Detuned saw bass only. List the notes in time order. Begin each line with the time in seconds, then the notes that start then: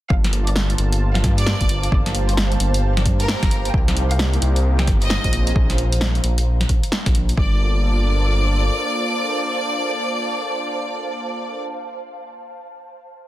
0.10 G1
0.78 G1
1.24 G2
1.61 G1
1.92 G1
2.60 G1
3.06 G2
3.43 G1
3.74 C2
4.42 C2
4.88 G1
5.25 A#1
5.56 A#1
6.24 A#1
6.69 A#1
7.06 A#1
7.37 G1